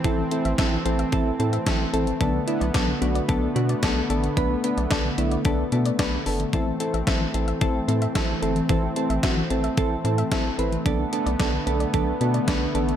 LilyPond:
<<
  \new Staff \with { instrumentName = "Synth keys" } { \time 4/4 \key a \minor \tempo 4 = 111 <c' e' a'>8 <c' e' a'>8 <c' e' a'>8 <c' e' a'>8 <c' e' a'>8 <c' e' a'>8 <c' e' a'>8 <c' e' a'>8 | <b d' a'>8 <b d' e'>8 <b d' a'>8 <b d' fis'>8 <b d' a'>8 <b d' fis'>8 <b d' a'>8 <b d' a'>8 | <b d' b'>8 <b d' b'>8 <b d' a'>8 <b d' e'>8 <b d' a'>8 <b d' a'>8 <b d' b'>8 <b d' a'>8 | <c' e' a'>8 <c' e' a'>8 <c' e' a'>8 <c' e' a'>8 <c' e' a'>8 <c' e' a'>8 <c' e' a'>8 <c' e' a'>8 |
<c' e' a'>8 <c' e' a'>8 <c' e' fis'>8 <c' e' a'>8 <c' e' a'>8 <c' e' a'>8 <c' e' a'>8 <c' e' b'>8 | <b d' a'>8 <b d' a'>8 <b d' a'>8 <b d' a'>8 <b d' a'>8 <b d' a'>8 <b d' b'>8 <b d' a'>8 | }
  \new Staff \with { instrumentName = "Synth arpeggio sound" } { \time 4/4 \key a \minor e16 e16 r16 e''16 e''16 e16 c'16 e''16 e16 r16 c'16 e''16 e''16 r16 a'16 e16 | d16 d16 r16 d''16 d''16 d16 b16 d''16 d16 r16 b16 d''16 d''16 r16 a'16 d16 | d16 d16 r16 d''16 d''16 d16 b16 d''16 d16 r16 b16 d''16 d''16 r16 a'16 d16 | e16 e16 r16 e''16 e''16 e16 c'16 e''16 e16 r16 c'16 e''16 e''16 r16 a'16 e16 |
e16 e16 r16 e''16 e''16 e16 c'16 e''16 e16 r16 c'16 e''16 e''16 r16 a'16 e16 | d16 d16 r16 d''16 d''16 d16 b16 d''16 d16 r16 b16 d''16 d''16 r16 a'16 d16 | }
  \new Staff \with { instrumentName = "Analog synth pad" } { \time 4/4 \key a \minor << { <e c'>1 | <d b>1~ | <d b>1 | <e c'>1~ |
<e c'>1 | <d b>1 | } \\ { a1~ | a1~ | a1~ | a1~ |
a1 | a1 | } >> }
  \new Staff \with { instrumentName = "Analog synth bass" } { \clef bass \time 4/4 \key a \minor a,,8 r16 a,,16 a,,8 a,,8 a,,8 a,8 a,,8 a,,8 | b,,8 r16 b,,16 b,,8 b,,8 b,,8 b,8 b,,8 a,,8 | b,,8 r16 b,,16 b,,8 b,,8 b,,8 b,8 b,,8 g,,8 | a,,8 r16 a,,16 a,,8 a,,8 a,,8 a,8 a,,8 g,,8 |
a,,8 r16 a,,16 a,,8 a,,8 a,,8 a,8 a,,8 a,,8 | b,,8 r16 b,,16 b,,8 b,,8 b,,8 b,8 b,,8 a,,8 | }
  \new DrumStaff \with { instrumentName = "Drums" } \drummode { \time 4/4 <hh bd>8 hh16 hh16 <hh bd sn>8 hh16 hh16 <hh bd>8 hh16 hh16 <hh bd sn>8 hh16 hh16 | <hh bd>8 hh16 hh16 <hh bd sn>8 hh16 hh16 <hh bd>8 hh16 hh16 <hh bd sn>8 hh16 hh16 | <hh bd>8 hh16 hh16 <hh bd sn>8 hh16 hh16 <hh bd>8 hh16 hh16 <hh bd sn>8 hho16 hh16 | <hh bd>8 hh16 hh16 <hh bd sn>8 hh16 hh16 <hh bd>8 hh16 hh16 <hh bd sn>8 hh16 hh16 |
<hh bd>8 hh16 hh16 <hh bd sn>8 hh16 hh16 <hh bd>8 hh16 hh16 <hh bd sn>8 hh16 hh16 | <hh bd>8 hh16 hh16 <hh bd sn>8 hh16 hh16 <hh bd>8 hh16 hh16 <hh bd sn>8 hh16 hh16 | }
>>